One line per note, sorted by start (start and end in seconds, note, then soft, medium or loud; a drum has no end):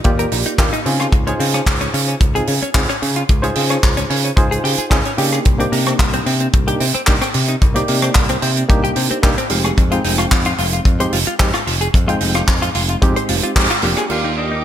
0.04 0.25 D#2 medium
0.04 0.56 A#3 medium
0.04 0.56 F4 medium
0.04 0.56 G4 loud
0.04 0.56 D5 medium
0.04 kick loud
0.04 closed hi-hat medium
0.19 0.25 A#4 medium
0.19 closed hi-hat medium
0.32 0.42 A#1 medium
0.32 0.36 D#4 medium
0.32 open hi-hat loud
0.46 0.52 D#4 loud
0.46 muted picked electric bass stroke soft
0.46 closed hi-hat medium
0.58 0.69 D#2 medium
0.58 0.71 A#3 medium
0.58 0.71 D4 medium
0.58 0.71 F4 medium
0.58 0.71 G4 medium
0.58 kick loud
0.58 clap loud
0.58 closed hi-hat medium
0.73 0.79 D#4 loud
0.73 closed hi-hat medium
0.85 0.93 C#3 loud
0.85 1.06 C#3 medium
0.85 1.24 C4 medium
0.85 1.24 D#4 medium
0.85 1.24 F4 medium
0.85 1.24 G#4 medium
0.85 open hi-hat loud
1.00 1.06 F4 medium
1.00 cross-stick medium
1.00 closed hi-hat medium
1.12 1.32 C#2 medium
1.12 kick loud
1.12 closed hi-hat medium
1.27 1.33 C#4 medium
1.27 2.32 D#4 medium
1.27 2.32 F4 medium
1.27 2.33 G#4 medium
1.27 2.32 C5 medium
1.27 closed hi-hat soft
1.40 1.60 C#3 medium
1.40 1.47 C4 medium
1.40 open hi-hat loud
1.54 1.60 C#4 loud
1.54 cross-stick medium
1.54 closed hi-hat medium
1.66 1.86 C#2 medium
1.66 kick loud
1.66 clap loud
1.66 closed hi-hat medium
1.81 1.87 C#4 loud
1.81 closed hi-hat medium
1.94 2.14 C#3 medium
1.94 2.01 C#4 medium
1.94 open hi-hat loud
2.08 2.15 C#4 medium
2.08 closed hi-hat medium
2.21 2.41 C#2 medium
2.21 kick loud
2.21 closed hi-hat medium
2.35 2.53 C4 medium
2.35 2.53 D#4 medium
2.35 2.53 F4 medium
2.35 2.42 G#4 medium
2.35 2.53 G#4 medium
2.35 closed hi-hat medium
2.47 2.58 C#3 medium
2.47 2.52 C#4 medium
2.47 open hi-hat loud
2.62 2.69 C#4 medium
2.62 muted picked electric bass stroke soft
2.62 closed hi-hat medium
2.75 2.85 C#2 medium
2.75 2.87 C4 medium
2.75 2.87 D#4 medium
2.75 2.87 F4 medium
2.75 2.87 G#4 medium
2.75 kick loud
2.75 clap loud
2.75 closed hi-hat medium
2.89 2.96 C#4 medium
2.89 cross-stick medium
2.89 closed hi-hat medium
3.02 3.09 C#3 loud
3.02 3.22 C#3 medium
3.02 open hi-hat loud
3.16 3.23 F4 loud
3.16 closed hi-hat medium
3.29 3.49 C#2 medium
3.29 kick loud
3.29 closed hi-hat medium
3.42 3.50 C#4 medium
3.42 4.34 D#4 medium
3.42 4.34 F4 medium
3.42 4.35 G#4 loud
3.42 4.34 C5 medium
3.42 closed hi-hat medium
3.55 3.76 C#3 medium
3.55 3.63 C4 medium
3.55 open hi-hat loud
3.70 3.77 C#4 medium
3.70 cross-stick medium
3.70 closed hi-hat soft
3.83 4.03 C#2 medium
3.83 kick loud
3.83 clap loud
3.83 closed hi-hat medium
3.97 4.04 C#4 loud
3.97 closed hi-hat medium
4.10 4.30 C#3 medium
4.10 4.17 C#4 medium
4.10 open hi-hat loud
4.24 4.31 C#4 medium
4.24 closed hi-hat medium
4.36 4.57 C#2 medium
4.36 4.88 D#4 medium
4.36 4.88 F4 medium
4.36 4.88 G#4 loud
4.36 4.88 C5 medium
4.36 kick loud
4.36 closed hi-hat medium
4.51 4.58 G#4 medium
4.51 closed hi-hat medium
4.64 4.74 C#3 medium
4.64 4.71 G4 medium
4.64 open hi-hat loud
4.78 4.85 G#4 medium
4.78 muted picked electric bass stroke soft
4.78 closed hi-hat medium
4.90 5.01 C#2 medium
4.90 5.03 C4 medium
4.90 4.98 C#4 medium
4.90 5.03 D#4 medium
4.90 5.03 F4 medium
4.90 5.03 G#4 medium
4.90 kick loud
4.90 clap loud
4.90 closed hi-hat medium
5.05 5.12 C#4 medium
5.05 closed hi-hat medium
5.17 5.38 C#3 medium
5.17 5.56 A#3 medium
5.17 5.56 D4 medium
5.17 5.56 D#4 medium
5.17 5.56 G4 medium
5.17 5.25 G4 medium
5.17 open hi-hat loud
5.33 5.39 G#4 medium
5.33 cross-stick medium
5.33 closed hi-hat soft
5.45 5.65 C2 medium
5.45 kick loud
5.45 closed hi-hat medium
5.59 6.64 A#3 medium
5.59 5.66 C4 medium
5.59 6.64 D4 medium
5.59 6.64 D#4 medium
5.59 6.65 G4 medium
5.59 closed hi-hat medium
5.72 5.92 C3 medium
5.72 5.79 A#3 medium
5.72 open hi-hat loud
5.86 5.93 C4 medium
5.86 cross-stick medium
5.86 closed hi-hat medium
5.99 6.19 C2 medium
5.99 kick loud
5.99 clap loud
5.99 closed hi-hat medium
6.13 6.20 C4 loud
6.13 closed hi-hat medium
6.26 6.46 C3 medium
6.26 6.34 C4 loud
6.26 open hi-hat medium
6.40 6.47 C4 medium
6.40 closed hi-hat medium
6.53 6.73 C2 medium
6.53 kick loud
6.53 closed hi-hat medium
6.67 6.85 A#3 medium
6.67 6.85 D4 medium
6.67 6.85 D#4 medium
6.67 6.74 G4 medium
6.67 6.85 G4 medium
6.67 closed hi-hat medium
6.80 6.91 C3 medium
6.80 6.85 C4 medium
6.80 open hi-hat loud
6.94 7.01 C4 loud
6.94 muted picked electric bass stroke soft
6.94 closed hi-hat medium
7.07 7.18 C2 medium
7.07 7.19 A#3 medium
7.07 7.19 D4 medium
7.07 7.19 D#4 medium
7.07 7.19 G4 medium
7.07 kick medium
7.07 clap loud
7.07 closed hi-hat medium
7.21 7.28 C4 loud
7.21 cross-stick medium
7.21 closed hi-hat medium
7.34 7.41 C3 loud
7.34 7.54 C3 medium
7.34 open hi-hat loud
7.48 7.55 D#4 loud
7.48 closed hi-hat soft
7.62 7.81 C2 medium
7.62 kick loud
7.62 closed hi-hat medium
7.74 8.66 A#3 medium
7.74 7.82 C4 medium
7.74 8.66 D#4 medium
7.74 8.67 G4 loud
7.74 8.66 D5 medium
7.74 closed hi-hat medium
7.88 8.08 C3 medium
7.88 7.96 A#3 medium
7.88 open hi-hat loud
8.02 8.09 C4 loud
8.02 cross-stick medium
8.02 closed hi-hat medium
8.15 8.35 C2 medium
8.15 kick loud
8.15 clap loud
8.15 closed hi-hat medium
8.29 8.36 C4 loud
8.29 closed hi-hat medium
8.42 8.62 C3 medium
8.42 8.50 C4 medium
8.42 open hi-hat medium
8.56 8.63 C4 medium
8.56 closed hi-hat medium
8.69 8.89 C2 medium
8.69 9.20 A#3 medium
8.69 9.20 D4 medium
8.69 9.20 D#4 medium
8.69 9.21 G4 loud
8.69 kick loud
8.69 closed hi-hat medium
8.84 8.90 G4 medium
8.84 closed hi-hat medium
8.96 9.07 C3 medium
8.96 9.01 C4 medium
8.96 open hi-hat loud
9.11 9.17 C4 loud
9.11 muted picked electric bass stroke soft
9.11 closed hi-hat medium
9.23 9.34 C2 medium
9.23 9.35 A#3 medium
9.23 9.35 D4 medium
9.23 9.36 D#4 medium
9.23 9.36 G4 loud
9.23 kick loud
9.23 clap loud
9.23 closed hi-hat medium
9.38 9.44 C4 loud
9.38 closed hi-hat medium
9.50 9.70 F1 medium
9.50 9.58 F3 loud
9.50 9.88 G#3 medium
9.50 9.88 C4 medium
9.50 9.88 D#4 medium
9.50 9.89 G4 medium
9.50 open hi-hat loud
9.64 9.71 G#4 loud
9.64 cross-stick medium
9.64 closed hi-hat soft
9.78 9.97 F2 loud
9.78 kick loud
9.78 closed hi-hat medium
9.91 10.96 G#3 medium
9.91 10.96 C4 medium
9.91 10.97 D#4 medium
9.91 9.98 F4 medium
9.91 10.97 G5 medium
9.91 closed hi-hat medium
10.04 10.25 F1 medium
10.04 10.12 D#4 medium
10.04 open hi-hat loud
10.18 10.25 F4 loud
10.18 cross-stick medium
10.18 closed hi-hat medium
10.31 10.51 F2 medium
10.31 kick loud
10.31 clap loud
10.31 closed hi-hat medium
10.45 10.52 F4 loud
10.45 closed hi-hat medium
10.58 10.79 F1 loud
10.58 10.66 F4 medium
10.58 open hi-hat loud
10.73 10.79 F4 medium
10.73 closed hi-hat medium
10.85 11.05 F2 medium
10.85 kick loud
10.85 closed hi-hat medium
11.00 11.17 G#3 medium
11.00 11.18 C4 medium
11.00 11.18 D#4 medium
11.00 11.18 G4 medium
11.00 11.07 C5 medium
11.00 closed hi-hat medium
11.13 11.23 F1 medium
11.13 11.17 F4 medium
11.13 open hi-hat loud
11.26 11.33 F4 loud
11.26 muted picked electric bass stroke soft
11.26 closed hi-hat medium
11.39 11.50 F2 medium
11.39 11.51 G#3 medium
11.39 11.52 C4 medium
11.39 11.52 D#4 medium
11.39 11.52 G4 loud
11.39 kick loud
11.39 clap loud
11.39 closed hi-hat medium
11.54 11.61 F4 loud
11.54 cross-stick medium
11.54 closed hi-hat soft
11.67 11.87 F1 medium
11.67 11.74 F3 loud
11.67 open hi-hat loud
11.81 11.87 G#4 loud
11.81 closed hi-hat medium
11.94 12.14 F2 loud
11.94 kick loud
11.94 closed hi-hat medium
12.08 12.99 G#3 medium
12.08 12.99 C4 medium
12.08 12.99 D#4 medium
12.08 12.14 F4 medium
12.08 13.00 G5 loud
12.08 closed hi-hat medium
12.21 12.41 F1 medium
12.21 12.28 D#4 medium
12.21 open hi-hat medium
12.34 12.42 F4 loud
12.34 cross-stick medium
12.34 closed hi-hat medium
12.48 12.68 F2 medium
12.48 kick medium
12.48 clap loud
12.48 closed hi-hat medium
12.62 12.69 F4 loud
12.62 closed hi-hat medium
12.75 12.95 F1 loud
12.75 12.82 F4 medium
12.75 open hi-hat loud
12.89 12.96 F4 medium
12.89 closed hi-hat medium
13.02 13.12 F2 medium
13.02 13.53 G#3 medium
13.02 13.53 C4 medium
13.02 13.53 D#4 medium
13.02 13.53 G4 loud
13.02 kick loud
13.02 closed hi-hat medium
13.16 13.23 C5 medium
13.16 closed hi-hat medium
13.29 13.39 F1 medium
13.29 13.33 F4 medium
13.29 open hi-hat loud
13.43 13.50 F4 loud
13.43 muted picked electric bass stroke soft
13.43 closed hi-hat medium
13.56 13.66 F2 medium
13.56 13.68 G#3 medium
13.56 13.68 C4 medium
13.56 13.68 D#4 medium
13.56 13.68 G4 loud
13.56 kick loud
13.56 clap loud
13.56 closed hi-hat medium
13.70 13.77 F4 loud
13.70 closed hi-hat medium
13.82 13.93 F1 loud
13.82 13.90 F3 loud
13.82 14.08 A#3 medium
13.82 14.21 D4 medium
13.82 14.10 F4 medium
13.82 14.11 G4 medium
13.82 open hi-hat loud
13.97 14.04 G#4 loud
13.97 cross-stick medium
13.97 closed hi-hat soft
14.10 14.64 D#2 medium
14.10 14.64 A#3 medium
14.10 14.39 F4 medium
14.10 14.64 F4 medium
14.10 14.64 G4 medium
14.10 14.64 A#4 medium
14.10 14.64 D5 medium
14.10 14.64 G5 medium
14.10 14.64 D6 medium
14.10 crash medium
14.24 14.31 D#4 medium
14.37 14.45 D4 medium
14.37 14.64 D#4 medium
14.52 14.58 D#4 medium